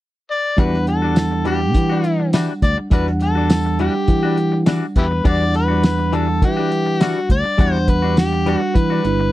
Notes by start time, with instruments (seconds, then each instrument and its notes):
0.31 harmonica D5
0.57 fingered electric bass E2, clean electric guitar E3 G3 D4 F#4, tine electric piano G3 D4 F#5, harmonica B4, kick, closed hi-hat
0.74 snare
0.87 harmonica A4, muted clean electric guitar stroke, closed hi-hat
1.02 clean electric guitar G3 D4 F#4
1.16 muted clean electric guitar stroke, snare, closed hi-hat, tambourine
1.31 muted clean electric guitar stroke
1.45 clean electric guitar E3 G3 D4 F#4, harmonica G4, closed hi-hat
1.61 muted clean electric guitar stroke
1.74 fingered electric bass E3, kick, closed hi-hat
1.90 clean electric guitar G3 D4 F#4
2.04 harmonica F#4, muted clean electric guitar stroke, closed hi-hat
2.20 muted clean electric guitar stroke
2.33 clean electric guitar E3 G3 D4 F#4, snare, closed hi-hat, tambourine
2.62 fingered electric bass D2, harmonica D5, muted clean electric guitar stroke, kick, closed hi-hat
2.78 muted clean electric guitar stroke
2.91 fingered electric bass E2, clean electric guitar E3 G3 D4 F#4, tine electric piano G3 D4 F#5, harmonica B4, kick, closed hi-hat
3.07 snare
3.21 harmonica A4, muted clean electric guitar stroke, closed hi-hat
3.35 clean electric guitar G3 D4 F#4
3.50 muted clean electric guitar stroke, snare, closed hi-hat, tambourine
3.65 muted clean electric guitar stroke
3.79 clean electric guitar E3 G3 D4 F#4, harmonica G4, closed hi-hat
3.95 muted clean electric guitar stroke
4.08 fingered electric bass E3, kick, closed hi-hat
4.23 clean electric guitar G3 D4 F#4
4.37 muted clean electric guitar stroke, closed hi-hat
4.52 muted clean electric guitar stroke
4.66 clean electric guitar E3 G3 D4 F#4, snare, closed hi-hat, tambourine
4.96 fingered electric bass E2, harmonica E4 G4 B4, muted clean electric guitar stroke, kick, closed hi-hat
5.11 muted clean electric guitar stroke
5.24 fingered electric bass E2, clean electric guitar E3 G3 D4 F#4, tine electric piano G3 D4 F#5, harmonica D5, kick, closed hi-hat
5.54 harmonica B4, muted clean electric guitar stroke, closed hi-hat
5.68 clean electric guitar G3 D4 F#4
5.83 muted clean electric guitar stroke, snare, closed hi-hat, tambourine
5.98 muted clean electric guitar stroke
6.12 clean electric guitar E3 G3 D4 F#4, harmonica A4, closed hi-hat
6.28 muted clean electric guitar stroke
6.42 fingered electric bass E3, harmonica G4, kick, closed hi-hat
6.57 clean electric guitar G3 D4 F#4
6.71 muted clean electric guitar stroke, closed hi-hat
6.86 muted clean electric guitar stroke
7.00 clean electric guitar E3 G3 D4 F#4, harmonica F#4, snare, closed hi-hat, tambourine
7.29 fingered electric bass D2, harmonica D5, muted clean electric guitar stroke, kick, closed hi-hat
7.44 muted clean electric guitar stroke
7.58 fingered electric bass E2, clean electric guitar E3 G3 D4 F#4, tine electric piano G3 D4 F#5, kick, closed hi-hat
7.73 harmonica C5, snare
7.88 harmonica B4, muted clean electric guitar stroke, kick, closed hi-hat
8.02 clean electric guitar G3 D4 F#4
8.17 harmonica G4, muted clean electric guitar stroke, snare, closed hi-hat, tambourine
8.33 muted clean electric guitar stroke
8.46 clean electric guitar E3 G3 D4 F#4, closed hi-hat
8.57 harmonica F#4
8.62 muted clean electric guitar stroke
8.75 fingered electric bass E3, harmonica B4, kick, closed hi-hat
8.90 clean electric guitar G3 D4 F#4
9.05 fingered electric bass G1, tine electric piano G3 D4 E4, muted clean electric guitar stroke, closed hi-hat
9.20 muted clean electric guitar stroke